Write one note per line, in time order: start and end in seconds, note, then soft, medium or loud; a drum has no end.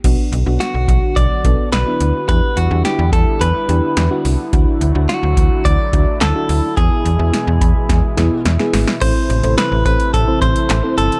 0.04 0.16 B1 loud
0.04 2.26 D3 medium
0.04 2.26 F#3 medium
0.04 4.49 B3 medium
0.04 0.38 B3 medium
0.04 0.38 D4 medium
0.04 2.26 F#4 medium
0.04 0.38 F#4 medium
0.04 kick loud
0.04 closed hi-hat medium
0.04 crash medium
0.32 0.44 B1 loud
0.32 closed hi-hat medium
0.46 0.58 B1 medium
0.46 1.25 B3 medium
0.46 1.25 D4 medium
0.46 1.25 F#4 medium
0.60 1.18 F#4 medium
0.60 snare loud
0.60 closed hi-hat medium
0.74 0.86 B1 medium
0.88 1.00 B1 loud
0.88 kick loud
0.88 closed hi-hat medium
1.16 1.28 B1 loud
1.16 1.69 D5 loud
1.16 kick medium
1.16 closed hi-hat medium
1.45 1.56 B1 loud
1.45 1.78 B3 medium
1.45 1.78 D4 medium
1.45 1.78 A4 medium
1.45 kick medium
1.45 closed hi-hat medium
1.72 1.84 B1 loud
1.72 2.28 B4 medium
1.72 snare loud
1.72 closed hi-hat medium
1.87 2.20 B3 medium
1.87 2.20 D4 medium
1.87 2.20 E4 medium
2.01 2.12 D2 medium
2.01 closed hi-hat medium
2.29 2.41 E2 loud
2.29 6.73 D3 medium
2.29 4.51 G3 medium
2.29 2.62 D4 medium
2.29 2.62 E4 medium
2.29 4.51 E4 medium
2.29 2.62 G4 medium
2.29 2.58 B4 loud
2.29 kick loud
2.29 closed hi-hat medium
2.57 2.69 E2 loud
2.57 2.84 F#4 medium
2.57 closed hi-hat medium
2.71 2.83 E2 loud
2.71 3.49 D4 medium
2.71 3.49 E4 medium
2.71 3.49 G4 medium
2.85 3.11 G4 medium
2.85 snare loud
2.85 closed hi-hat medium
2.99 3.11 E2 loud
3.13 3.25 E2 loud
3.13 3.42 A4 medium
3.13 kick loud
3.13 closed hi-hat medium
3.41 3.53 E2 loud
3.41 4.21 B4 medium
3.41 closed hi-hat medium
3.69 3.81 E2 loud
3.69 4.02 D4 medium
3.69 4.02 E4 medium
3.69 4.02 G4 medium
3.69 closed hi-hat medium
3.97 4.09 E2 loud
3.97 snare loud
3.97 closed hi-hat medium
4.11 4.45 D4 medium
4.11 4.45 E4 medium
4.11 4.45 F#4 loud
4.25 4.37 C2 medium
4.25 open hi-hat medium
4.53 4.65 D2 loud
4.53 6.75 F#3 medium
4.53 6.75 A3 medium
4.53 4.87 D4 medium
4.53 4.87 E4 medium
4.53 8.98 E4 medium
4.53 4.87 F#4 medium
4.53 kick loud
4.53 closed hi-hat medium
4.81 4.93 D2 medium
4.81 closed hi-hat medium
4.95 5.07 D2 loud
4.95 5.73 D4 medium
4.95 5.74 E4 medium
4.95 5.73 F#4 medium
5.09 5.67 F#4 medium
5.09 snare loud
5.09 closed hi-hat medium
5.23 5.35 D2 loud
5.37 5.49 D2 loud
5.37 kick loud
5.37 closed hi-hat medium
5.65 5.77 D2 loud
5.65 6.21 D5 loud
5.65 kick medium
5.65 closed hi-hat medium
5.93 6.05 D2 loud
5.93 6.27 D4 medium
5.93 6.27 E4 medium
5.93 6.27 F#4 medium
5.93 kick medium
5.93 closed hi-hat medium
6.21 6.33 D2 loud
6.21 6.77 A4 loud
6.21 snare loud
6.21 clap loud
6.21 closed hi-hat medium
6.35 6.69 D4 medium
6.35 6.69 E4 medium
6.35 6.69 F#4 medium
6.49 6.61 D2 loud
6.49 open hi-hat medium
6.77 6.89 E2 loud
6.77 8.99 B2 medium
6.77 8.99 E3 medium
6.77 8.99 G#3 medium
6.77 7.11 B3 medium
6.77 7.11 E4 medium
6.77 8.41 G#4 medium
6.77 7.11 G#4 medium
6.77 kick loud
6.77 closed hi-hat medium
7.05 7.17 E2 loud
7.05 closed hi-hat medium
7.19 7.31 E2 medium
7.19 7.98 B3 medium
7.19 7.98 E4 medium
7.19 7.98 G#4 medium
7.33 snare loud
7.33 closed hi-hat medium
7.47 7.59 E2 loud
7.61 7.73 E2 loud
7.61 7.87 B5 medium
7.61 kick loud
7.61 closed hi-hat medium
7.89 8.01 E2 loud
7.89 8.41 G#5 medium
7.89 kick medium
7.89 snare medium
7.89 closed hi-hat medium
8.17 8.29 E2 loud
8.17 8.51 B3 loud
8.17 8.51 E4 medium
8.17 8.51 G#4 loud
8.17 snare medium
8.17 closed hi-hat medium
8.45 8.57 E2 loud
8.45 8.98 E5 medium
8.45 snare medium
8.45 closed hi-hat medium
8.59 8.93 B3 medium
8.59 8.93 E4 medium
8.59 8.93 G#4 loud
8.59 snare medium
8.73 8.85 G#1 medium
8.73 snare loud
8.73 open hi-hat medium
8.87 snare medium
9.01 9.13 A1 loud
9.01 11.20 C3 medium
9.01 11.20 E3 medium
9.01 11.20 A3 medium
9.01 9.35 C4 medium
9.01 9.35 E4 medium
9.01 11.20 E4 medium
9.01 9.35 A4 medium
9.01 9.35 C5 medium
9.01 9.57 C5 loud
9.01 kick loud
9.01 closed hi-hat medium
9.01 crash loud
9.30 9.42 A1 loud
9.30 closed hi-hat medium
9.43 9.56 A1 loud
9.43 9.77 C4 medium
9.43 9.77 E4 medium
9.43 9.77 A4 medium
9.43 9.77 C5 medium
9.43 closed hi-hat medium
9.58 9.84 B4 loud
9.58 snare loud
9.58 closed hi-hat medium
9.72 9.84 A1 medium
9.85 9.97 A1 loud
9.85 10.19 C4 medium
9.85 10.19 E4 medium
9.85 10.19 A4 medium
9.85 10.13 B4 loud
9.85 10.19 C5 medium
9.85 kick loud
9.85 closed hi-hat medium
10.00 closed hi-hat medium
10.14 10.26 A1 loud
10.14 10.41 A4 loud
10.14 kick medium
10.14 closed hi-hat medium
10.28 10.73 C4 medium
10.28 10.73 E4 medium
10.28 10.73 A4 medium
10.28 10.73 C5 medium
10.42 10.54 A1 loud
10.42 10.97 C5 loud
10.42 kick medium
10.42 closed hi-hat medium
10.56 closed hi-hat medium
10.70 10.82 A1 loud
10.70 snare loud
10.70 clap loud
10.70 closed hi-hat medium
10.84 11.17 C4 medium
10.84 11.17 E4 medium
10.84 11.17 A4 medium
10.84 11.17 C5 medium
10.98 11.10 G1 medium
10.98 11.20 A4 medium
10.98 closed hi-hat medium
11.12 closed hi-hat soft